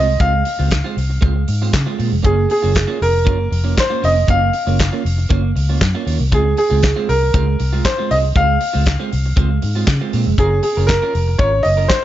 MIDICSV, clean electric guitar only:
0, 0, Header, 1, 3, 480
1, 0, Start_track
1, 0, Key_signature, -5, "major"
1, 0, Tempo, 508475
1, 192, Time_signature, 4, 2, 24, 8
1, 11370, End_track
2, 0, Start_track
2, 0, Title_t, "Clean electric guitar"
2, 0, Program_c, 0, 27
2, 0, Note_on_c, 0, 56, 66
2, 105, Note_off_c, 0, 56, 0
2, 191, Note_on_c, 0, 56, 87
2, 196, Note_on_c, 0, 60, 83
2, 198, Note_on_c, 0, 65, 97
2, 313, Note_off_c, 0, 65, 0
2, 321, Note_off_c, 0, 60, 0
2, 387, Note_off_c, 0, 56, 0
2, 555, Note_on_c, 0, 65, 61
2, 562, Note_on_c, 0, 60, 58
2, 569, Note_on_c, 0, 56, 52
2, 655, Note_off_c, 0, 56, 0
2, 656, Note_off_c, 0, 60, 0
2, 659, Note_off_c, 0, 65, 0
2, 795, Note_on_c, 0, 65, 97
2, 806, Note_on_c, 0, 60, 89
2, 810, Note_on_c, 0, 56, 70
2, 904, Note_off_c, 0, 56, 0
2, 909, Note_off_c, 0, 60, 0
2, 909, Note_off_c, 0, 65, 0
2, 1141, Note_on_c, 0, 56, 76
2, 1150, Note_on_c, 0, 60, 90
2, 1152, Note_on_c, 0, 65, 92
2, 1266, Note_off_c, 0, 65, 0
2, 1272, Note_off_c, 0, 60, 0
2, 1344, Note_off_c, 0, 56, 0
2, 1526, Note_on_c, 0, 65, 65
2, 1531, Note_on_c, 0, 60, 62
2, 1536, Note_on_c, 0, 56, 58
2, 1616, Note_off_c, 0, 56, 0
2, 1619, Note_off_c, 0, 60, 0
2, 1625, Note_off_c, 0, 65, 0
2, 1758, Note_on_c, 0, 65, 105
2, 1762, Note_on_c, 0, 60, 87
2, 1771, Note_on_c, 0, 56, 71
2, 1858, Note_off_c, 0, 56, 0
2, 1860, Note_off_c, 0, 60, 0
2, 1866, Note_off_c, 0, 65, 0
2, 1869, Note_on_c, 0, 56, 60
2, 1872, Note_on_c, 0, 60, 65
2, 1877, Note_on_c, 0, 65, 71
2, 1986, Note_off_c, 0, 65, 0
2, 1993, Note_off_c, 0, 60, 0
2, 2031, Note_off_c, 0, 56, 0
2, 2101, Note_on_c, 0, 58, 74
2, 2104, Note_on_c, 0, 61, 77
2, 2111, Note_on_c, 0, 65, 78
2, 2223, Note_off_c, 0, 65, 0
2, 2230, Note_off_c, 0, 61, 0
2, 2305, Note_off_c, 0, 58, 0
2, 2476, Note_on_c, 0, 65, 71
2, 2487, Note_on_c, 0, 61, 61
2, 2491, Note_on_c, 0, 58, 57
2, 2571, Note_off_c, 0, 58, 0
2, 2577, Note_off_c, 0, 61, 0
2, 2581, Note_off_c, 0, 65, 0
2, 2711, Note_on_c, 0, 65, 98
2, 2716, Note_on_c, 0, 61, 81
2, 2720, Note_on_c, 0, 58, 80
2, 2816, Note_off_c, 0, 58, 0
2, 2817, Note_off_c, 0, 61, 0
2, 2822, Note_off_c, 0, 65, 0
2, 3068, Note_on_c, 0, 58, 83
2, 3074, Note_on_c, 0, 61, 86
2, 3078, Note_on_c, 0, 65, 97
2, 3189, Note_off_c, 0, 65, 0
2, 3193, Note_off_c, 0, 61, 0
2, 3270, Note_off_c, 0, 58, 0
2, 3434, Note_on_c, 0, 65, 54
2, 3438, Note_on_c, 0, 61, 53
2, 3444, Note_on_c, 0, 58, 56
2, 3540, Note_off_c, 0, 58, 0
2, 3546, Note_off_c, 0, 61, 0
2, 3550, Note_off_c, 0, 65, 0
2, 3680, Note_on_c, 0, 65, 87
2, 3686, Note_on_c, 0, 61, 76
2, 3690, Note_on_c, 0, 58, 72
2, 3782, Note_off_c, 0, 58, 0
2, 3789, Note_off_c, 0, 61, 0
2, 3792, Note_off_c, 0, 65, 0
2, 3793, Note_on_c, 0, 58, 57
2, 3800, Note_on_c, 0, 61, 72
2, 3803, Note_on_c, 0, 65, 70
2, 3912, Note_off_c, 0, 65, 0
2, 3921, Note_off_c, 0, 61, 0
2, 3955, Note_off_c, 0, 58, 0
2, 4033, Note_on_c, 0, 58, 77
2, 4038, Note_on_c, 0, 61, 88
2, 4042, Note_on_c, 0, 65, 97
2, 4156, Note_off_c, 0, 65, 0
2, 4160, Note_off_c, 0, 61, 0
2, 4233, Note_off_c, 0, 58, 0
2, 4404, Note_on_c, 0, 65, 61
2, 4407, Note_on_c, 0, 61, 60
2, 4412, Note_on_c, 0, 58, 56
2, 4514, Note_off_c, 0, 58, 0
2, 4514, Note_off_c, 0, 61, 0
2, 4517, Note_off_c, 0, 65, 0
2, 4645, Note_on_c, 0, 65, 75
2, 4651, Note_on_c, 0, 61, 75
2, 4652, Note_on_c, 0, 58, 73
2, 4745, Note_off_c, 0, 58, 0
2, 4747, Note_off_c, 0, 61, 0
2, 4752, Note_off_c, 0, 65, 0
2, 4997, Note_on_c, 0, 58, 83
2, 5003, Note_on_c, 0, 61, 93
2, 5006, Note_on_c, 0, 65, 88
2, 5112, Note_off_c, 0, 65, 0
2, 5119, Note_off_c, 0, 61, 0
2, 5195, Note_off_c, 0, 58, 0
2, 5373, Note_on_c, 0, 65, 55
2, 5377, Note_on_c, 0, 61, 55
2, 5382, Note_on_c, 0, 58, 50
2, 5475, Note_off_c, 0, 58, 0
2, 5484, Note_off_c, 0, 61, 0
2, 5485, Note_off_c, 0, 65, 0
2, 5612, Note_on_c, 0, 65, 89
2, 5616, Note_on_c, 0, 61, 85
2, 5618, Note_on_c, 0, 58, 76
2, 5703, Note_off_c, 0, 58, 0
2, 5708, Note_off_c, 0, 61, 0
2, 5713, Note_off_c, 0, 65, 0
2, 5714, Note_on_c, 0, 58, 60
2, 5719, Note_on_c, 0, 61, 72
2, 5725, Note_on_c, 0, 65, 76
2, 5836, Note_off_c, 0, 65, 0
2, 5840, Note_off_c, 0, 61, 0
2, 5876, Note_off_c, 0, 58, 0
2, 5962, Note_on_c, 0, 56, 69
2, 5964, Note_on_c, 0, 60, 86
2, 5970, Note_on_c, 0, 65, 93
2, 6076, Note_off_c, 0, 65, 0
2, 6088, Note_off_c, 0, 60, 0
2, 6158, Note_off_c, 0, 56, 0
2, 6323, Note_on_c, 0, 65, 65
2, 6330, Note_on_c, 0, 60, 54
2, 6336, Note_on_c, 0, 56, 59
2, 6433, Note_off_c, 0, 56, 0
2, 6435, Note_off_c, 0, 60, 0
2, 6438, Note_off_c, 0, 65, 0
2, 6570, Note_on_c, 0, 65, 101
2, 6576, Note_on_c, 0, 60, 93
2, 6583, Note_on_c, 0, 56, 77
2, 6676, Note_off_c, 0, 56, 0
2, 6683, Note_off_c, 0, 65, 0
2, 6684, Note_off_c, 0, 60, 0
2, 6926, Note_on_c, 0, 56, 78
2, 6933, Note_on_c, 0, 60, 80
2, 6939, Note_on_c, 0, 65, 97
2, 7041, Note_off_c, 0, 65, 0
2, 7046, Note_off_c, 0, 60, 0
2, 7119, Note_off_c, 0, 56, 0
2, 7293, Note_on_c, 0, 65, 71
2, 7300, Note_on_c, 0, 60, 51
2, 7304, Note_on_c, 0, 56, 52
2, 7396, Note_off_c, 0, 56, 0
2, 7401, Note_off_c, 0, 60, 0
2, 7404, Note_off_c, 0, 65, 0
2, 7536, Note_on_c, 0, 65, 86
2, 7543, Note_on_c, 0, 60, 82
2, 7550, Note_on_c, 0, 56, 83
2, 7640, Note_off_c, 0, 56, 0
2, 7647, Note_off_c, 0, 60, 0
2, 7651, Note_off_c, 0, 65, 0
2, 7651, Note_on_c, 0, 56, 59
2, 7658, Note_on_c, 0, 60, 58
2, 7662, Note_on_c, 0, 65, 66
2, 7769, Note_off_c, 0, 65, 0
2, 7776, Note_off_c, 0, 60, 0
2, 7803, Note_off_c, 0, 56, 0
2, 7886, Note_on_c, 0, 56, 80
2, 7891, Note_on_c, 0, 60, 89
2, 7895, Note_on_c, 0, 65, 87
2, 7996, Note_off_c, 0, 65, 0
2, 8004, Note_off_c, 0, 60, 0
2, 8078, Note_off_c, 0, 56, 0
2, 8244, Note_on_c, 0, 65, 67
2, 8249, Note_on_c, 0, 56, 45
2, 8251, Note_on_c, 0, 60, 62
2, 8349, Note_off_c, 0, 56, 0
2, 8353, Note_off_c, 0, 60, 0
2, 8355, Note_off_c, 0, 65, 0
2, 8490, Note_on_c, 0, 65, 90
2, 8493, Note_on_c, 0, 60, 90
2, 8500, Note_on_c, 0, 56, 78
2, 8589, Note_off_c, 0, 56, 0
2, 8598, Note_off_c, 0, 60, 0
2, 8601, Note_off_c, 0, 65, 0
2, 8839, Note_on_c, 0, 56, 86
2, 8848, Note_on_c, 0, 60, 81
2, 8849, Note_on_c, 0, 65, 94
2, 8963, Note_off_c, 0, 65, 0
2, 8967, Note_off_c, 0, 60, 0
2, 9034, Note_off_c, 0, 56, 0
2, 9208, Note_on_c, 0, 65, 66
2, 9215, Note_on_c, 0, 60, 55
2, 9217, Note_on_c, 0, 56, 58
2, 9304, Note_off_c, 0, 56, 0
2, 9308, Note_off_c, 0, 60, 0
2, 9313, Note_off_c, 0, 65, 0
2, 9447, Note_on_c, 0, 65, 75
2, 9454, Note_on_c, 0, 60, 69
2, 9458, Note_on_c, 0, 56, 62
2, 9555, Note_off_c, 0, 56, 0
2, 9558, Note_off_c, 0, 60, 0
2, 9566, Note_off_c, 0, 65, 0
2, 9566, Note_on_c, 0, 56, 84
2, 9569, Note_on_c, 0, 60, 96
2, 9577, Note_on_c, 0, 65, 84
2, 9682, Note_off_c, 0, 65, 0
2, 9690, Note_off_c, 0, 60, 0
2, 9757, Note_off_c, 0, 56, 0
2, 9800, Note_on_c, 0, 61, 74
2, 9804, Note_on_c, 0, 65, 85
2, 9809, Note_on_c, 0, 70, 85
2, 9906, Note_off_c, 0, 70, 0
2, 9914, Note_off_c, 0, 65, 0
2, 9993, Note_off_c, 0, 61, 0
2, 10167, Note_on_c, 0, 70, 64
2, 10174, Note_on_c, 0, 65, 54
2, 10179, Note_on_c, 0, 61, 48
2, 10267, Note_off_c, 0, 61, 0
2, 10274, Note_off_c, 0, 65, 0
2, 10278, Note_off_c, 0, 70, 0
2, 10404, Note_on_c, 0, 70, 105
2, 10412, Note_on_c, 0, 65, 93
2, 10413, Note_on_c, 0, 61, 82
2, 10507, Note_off_c, 0, 61, 0
2, 10513, Note_off_c, 0, 65, 0
2, 10517, Note_off_c, 0, 70, 0
2, 10750, Note_on_c, 0, 61, 71
2, 10757, Note_on_c, 0, 65, 84
2, 10757, Note_on_c, 0, 70, 82
2, 10869, Note_off_c, 0, 70, 0
2, 10878, Note_off_c, 0, 65, 0
2, 10947, Note_off_c, 0, 61, 0
2, 11112, Note_on_c, 0, 70, 69
2, 11117, Note_on_c, 0, 65, 59
2, 11123, Note_on_c, 0, 61, 47
2, 11210, Note_off_c, 0, 61, 0
2, 11218, Note_off_c, 0, 65, 0
2, 11220, Note_off_c, 0, 70, 0
2, 11370, End_track
3, 0, Start_track
3, 0, Title_t, "Muted clean electric guitar strokes"
3, 75, Note_on_c, 9, 29, 49
3, 169, Note_off_c, 9, 29, 0
3, 325, Note_on_c, 9, 29, 50
3, 419, Note_off_c, 9, 29, 0
3, 436, Note_on_c, 9, 29, 43
3, 530, Note_off_c, 9, 29, 0
3, 666, Note_on_c, 9, 29, 41
3, 761, Note_off_c, 9, 29, 0
3, 915, Note_on_c, 9, 29, 43
3, 1010, Note_off_c, 9, 29, 0
3, 1033, Note_on_c, 9, 29, 55
3, 1128, Note_off_c, 9, 29, 0
3, 1277, Note_on_c, 9, 29, 45
3, 1371, Note_off_c, 9, 29, 0
3, 1395, Note_on_c, 9, 29, 34
3, 1490, Note_off_c, 9, 29, 0
3, 1627, Note_on_c, 9, 29, 49
3, 1722, Note_off_c, 9, 29, 0
3, 1997, Note_on_c, 9, 29, 52
3, 2091, Note_off_c, 9, 29, 0
3, 2234, Note_on_c, 9, 29, 37
3, 2329, Note_off_c, 9, 29, 0
3, 2350, Note_on_c, 9, 29, 41
3, 2444, Note_off_c, 9, 29, 0
3, 2582, Note_on_c, 9, 29, 38
3, 2677, Note_off_c, 9, 29, 0
3, 2827, Note_on_c, 9, 29, 45
3, 2921, Note_off_c, 9, 29, 0
3, 2958, Note_on_c, 9, 29, 46
3, 3052, Note_off_c, 9, 29, 0
3, 3200, Note_on_c, 9, 29, 42
3, 3295, Note_off_c, 9, 29, 0
3, 3311, Note_on_c, 9, 29, 41
3, 3405, Note_off_c, 9, 29, 0
3, 3551, Note_on_c, 9, 29, 45
3, 3646, Note_off_c, 9, 29, 0
3, 3923, Note_on_c, 9, 29, 50
3, 4017, Note_off_c, 9, 29, 0
3, 4167, Note_on_c, 9, 29, 48
3, 4261, Note_off_c, 9, 29, 0
3, 4280, Note_on_c, 9, 29, 37
3, 4375, Note_off_c, 9, 29, 0
3, 4526, Note_on_c, 9, 29, 41
3, 4620, Note_off_c, 9, 29, 0
3, 4757, Note_on_c, 9, 29, 40
3, 4851, Note_off_c, 9, 29, 0
3, 4890, Note_on_c, 9, 29, 49
3, 4984, Note_off_c, 9, 29, 0
3, 5124, Note_on_c, 9, 29, 54
3, 5218, Note_off_c, 9, 29, 0
3, 5245, Note_on_c, 9, 29, 49
3, 5340, Note_off_c, 9, 29, 0
3, 5848, Note_on_c, 9, 29, 50
3, 5942, Note_off_c, 9, 29, 0
3, 6087, Note_on_c, 9, 29, 44
3, 6182, Note_off_c, 9, 29, 0
3, 6201, Note_on_c, 9, 29, 43
3, 6295, Note_off_c, 9, 29, 0
3, 6444, Note_on_c, 9, 29, 38
3, 6538, Note_off_c, 9, 29, 0
3, 6688, Note_on_c, 9, 29, 43
3, 6782, Note_off_c, 9, 29, 0
3, 6821, Note_on_c, 9, 29, 42
3, 6915, Note_off_c, 9, 29, 0
3, 7053, Note_on_c, 9, 29, 50
3, 7147, Note_off_c, 9, 29, 0
3, 7167, Note_on_c, 9, 29, 47
3, 7262, Note_off_c, 9, 29, 0
3, 7407, Note_on_c, 9, 29, 43
3, 7501, Note_off_c, 9, 29, 0
3, 7781, Note_on_c, 9, 29, 51
3, 7875, Note_off_c, 9, 29, 0
3, 8007, Note_on_c, 9, 29, 54
3, 8102, Note_off_c, 9, 29, 0
3, 8123, Note_on_c, 9, 29, 45
3, 8217, Note_off_c, 9, 29, 0
3, 8360, Note_on_c, 9, 29, 42
3, 8455, Note_off_c, 9, 29, 0
3, 8600, Note_on_c, 9, 29, 49
3, 8695, Note_off_c, 9, 29, 0
3, 8739, Note_on_c, 9, 29, 60
3, 8834, Note_off_c, 9, 29, 0
3, 8975, Note_on_c, 9, 29, 52
3, 9069, Note_off_c, 9, 29, 0
3, 9080, Note_on_c, 9, 29, 41
3, 9174, Note_off_c, 9, 29, 0
3, 9316, Note_on_c, 9, 29, 40
3, 9410, Note_off_c, 9, 29, 0
3, 9694, Note_on_c, 9, 29, 52
3, 9788, Note_off_c, 9, 29, 0
3, 9917, Note_on_c, 9, 29, 54
3, 10012, Note_off_c, 9, 29, 0
3, 10034, Note_on_c, 9, 29, 47
3, 10128, Note_off_c, 9, 29, 0
3, 10278, Note_on_c, 9, 29, 38
3, 10373, Note_off_c, 9, 29, 0
3, 10519, Note_on_c, 9, 29, 44
3, 10613, Note_off_c, 9, 29, 0
3, 10645, Note_on_c, 9, 29, 44
3, 10740, Note_off_c, 9, 29, 0
3, 10881, Note_on_c, 9, 29, 59
3, 10975, Note_off_c, 9, 29, 0
3, 10983, Note_on_c, 9, 29, 44
3, 11078, Note_off_c, 9, 29, 0
3, 11221, Note_on_c, 9, 29, 50
3, 11316, Note_off_c, 9, 29, 0
3, 11370, End_track
0, 0, End_of_file